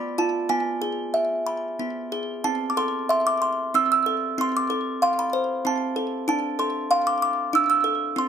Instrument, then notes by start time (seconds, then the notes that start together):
music box
Already playing: B3 F4 D5 B5
0.18 F4 A5
0.49 B3 G#5
0.82 G#4
1.14 E5
1.47 B5
1.79 B3
2.12 G#4
2.44 C4 A5
2.70 D6
2.77 A4 C6
3.09 E5 C6
3.27 D6
3.42 C6
3.74 C4 E6
3.92 E6
4.06 A4
4.38 C4 C6
4.57 D6
4.70 A4
5.02 F5 C6
5.19 B5
5.33 C5
5.65 C4 A5
5.96 A4
6.28 D4 A5
6.59 A4 C6
6.91 F5 C6
7.07 D6
7.22 D6
7.53 D4 E6
7.70 E6
7.84 A4
8.16 C4 C6